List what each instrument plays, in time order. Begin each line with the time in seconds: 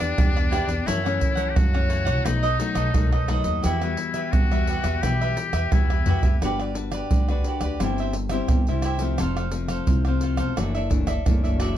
Already playing: nylon-string guitar E3 B3 D4 G4, muted trumpet D4
0.00 upright bass E2, cavaquinho G4 B4 D5, pandeiro, tamborim, shaker
0.18 upright bass E2, nylon-string guitar B2 B3 D4 G4, pandeiro, tamborim, shaker, surdo
0.36 cavaquinho G4 B4 D5, pandeiro, tamborim, shaker
0.51 nylon-string guitar B3 D4 G4, cavaquinho E4 G4 B4 D5, pandeiro, tamborim, shaker
0.67 upright bass E2, cavaquinho G4 B4 D5, pandeiro, shaker
0.86 upright bass F#2, nylon-string guitar F#2 E3 A3 C#4, cavaquinho E4 A4 C#5 F#5, muted trumpet E4, pandeiro, shaker, surdo
1.03 nylon-string guitar E3 A3 C#4, cavaquinho A4 C#5 F#5, pandeiro, tamborim, shaker
1.20 muted cavaquinho stroke, pandeiro, shaker, surdo
1.35 cavaquinho A4 C#5 F#5, pandeiro, shaker
1.50 muted trumpet G4
1.56 upright bass F#2, nylon-string guitar C#3, muted trumpet F#4, pandeiro, tamborim, shaker, surdo
1.73 nylon-string guitar E3 A3 C#4, cavaquinho A4 C#5 F#5, pandeiro, tamborim, shaker
1.89 cavaquinho E4 A4 C#5 F#5, pandeiro
2.05 upright bass C2, cavaquinho A4 C#5 F#5, pandeiro, tamborim, shaker
2.24 upright bass B1, nylon-string guitar B2 F#3 A3 D#4, cavaquinho D#4 A4 B4 D#5, muted trumpet D#4, pandeiro, tamborim, shaker, surdo
2.43 cavaquinho A4 B4 D#5, pandeiro, shaker
2.59 nylon-string guitar F#3 A3 D#4, muted cavaquinho stroke, pandeiro, shaker
2.74 upright bass B1, cavaquinho A4 B4 D#5, pandeiro, tamborim, shaker
2.94 upright bass B1, nylon-string guitar F#2 F#3 A3 D#4, pandeiro, tamborim, shaker, surdo
3.12 cavaquinho A4 B4 D#5, pandeiro, tamborim, shaker
3.28 nylon-string guitar F#3 A3 D#4, cavaquinho D#4 A4 B4 D#5, pandeiro, tamborim
3.44 upright bass D#2, cavaquinho A4 B4 D#5, pandeiro, shaker
3.63 upright bass E2, nylon-string guitar E3 G3 B3 F#4, muted trumpet E4, cavaquinho F#4 G4 B4 E5, pandeiro, shaker, surdo
3.82 nylon-string guitar G3 B3 F#4, cavaquinho G4 B4 E5, pandeiro, tamborim, shaker
3.97 muted cavaquinho stroke, pandeiro
4.14 cavaquinho G4 B4 E5, pandeiro, shaker
4.32 upright bass E2, nylon-string guitar B2, muted trumpet F#4, pandeiro, tamborim, shaker, surdo
4.52 nylon-string guitar G3 B3 F#4, cavaquinho G4 B4 E5, pandeiro, tamborim, shaker
4.67 cavaquinho F#4 G4 B4 E5, pandeiro
4.84 upright bass E2, cavaquinho G4 B4 E5, pandeiro, tamborim, shaker
5.02 upright bass B1, nylon-string guitar E3 G3 B3, cavaquinho F#4 G4 B4 E5, muted trumpet G4, pandeiro, tamborim, shaker, surdo
5.21 cavaquinho G4 B4 E5, pandeiro, shaker
5.37 muted cavaquinho stroke, pandeiro, shaker
5.53 upright bass E2, cavaquinho G4 B4 E5, pandeiro, tamborim, shaker
5.71 upright bass E2, nylon-string guitar B2 G3 B3 F#4, muted trumpet E4, pandeiro, tamborim, shaker, surdo
5.90 cavaquinho G4 B4 E5, pandeiro, tamborim, shaker
6.05 nylon-string guitar G3 B3 F#4, cavaquinho F#4 G4 B4 E5, surdo, pandeiro
6.22 upright bass D2, cavaquinho G4 B4 E5, pandeiro, shaker, surdo
6.41 upright bass G1, nylon-string guitar G3 D4 F#4 B4, cavaquinho F#4 G4 B4, pandeiro, tamborim, shaker, surdo
6.45 cavaquinho D5
6.60 cavaquinho G4 B4 D5, pandeiro, tamborim, shaker
6.75 nylon-string guitar D4 F#4 B4, muted cavaquinho stroke, pandeiro
6.92 cavaquinho B4 D5, pandeiro, tamborim, shaker
6.96 cavaquinho G4
7.11 upright bass D2, nylon-string guitar D3, pandeiro, shaker, surdo
7.28 nylon-string guitar D4 F#4 B4, cavaquinho B4 D5, pandeiro, tamborim, shaker
7.33 cavaquinho G4
7.44 cavaquinho F#4 G4 B4, pandeiro
7.49 cavaquinho D5
7.61 upright bass D2, cavaquinho B4 D5, pandeiro, tamborim, shaker
7.65 cavaquinho G4
7.80 upright bass G1, nylon-string guitar G2 G3 C4 E4, cavaquinho E4 G4, pandeiro, tamborim, shaker, surdo
7.84 cavaquinho C5 E5
7.98 cavaquinho G4 C5 E5, pandeiro, shaker
8.13 muted cavaquinho stroke, pandeiro
8.29 nylon-string guitar G3 C4 E4, cavaquinho G4 C5 E5, pandeiro, tamborim, shaker
8.48 upright bass G1, nylon-string guitar G2, pandeiro, tamborim, shaker, surdo
8.67 upright bass C2, nylon-string guitar G3 C4 E4, cavaquinho C5 E5, pandeiro, shaker
8.71 cavaquinho G4
8.82 cavaquinho E4 G4 C5 E5, pandeiro, tamborim
8.99 nylon-string guitar F3 A3 C4, cavaquinho G4 C5 E5, pandeiro, shaker
9.18 upright bass F1, nylon-string guitar F2, cavaquinho F4 A4 C5 F5, pandeiro, tamborim, shaker, surdo
9.37 cavaquinho A4 C5 F5, pandeiro, tamborim, shaker
9.51 nylon-string guitar F3 A3 C4, muted cavaquinho stroke, pandeiro
9.68 cavaquinho A4 C5 F5, pandeiro, tamborim, shaker
9.87 upright bass C2, nylon-string guitar C3, pandeiro, shaker, surdo
10.05 nylon-string guitar F3 A3 C4, cavaquinho C5 F5, pandeiro, tamborim, shaker
10.09 cavaquinho A4
10.21 cavaquinho F4 A4 C5 F5, pandeiro
10.37 upright bass E1, cavaquinho A4 C5 F5, pandeiro, tamborim, shaker
10.56 upright bass F#1, nylon-string guitar F#2 E3 A3 D4, cavaquinho F#4 A4 D5 E5, pandeiro, tamborim, shaker, surdo
10.75 cavaquinho A4 D5 E5, pandeiro, shaker
10.90 nylon-string guitar E3 A3 D4, muted cavaquinho stroke, pandeiro, surdo
11.07 cavaquinho A4 D5 E5, pandeiro, tamborim, shaker
11.26 upright bass F#1, nylon-string guitar F#2 E3 A3 D4, pandeiro, tamborim, shaker, surdo
11.44 upright bass F#1, cavaquinho A4 D5 E5, pandeiro, shaker
11.60 cavaquinho F#4 A4 D5 E5, pandeiro, tamborim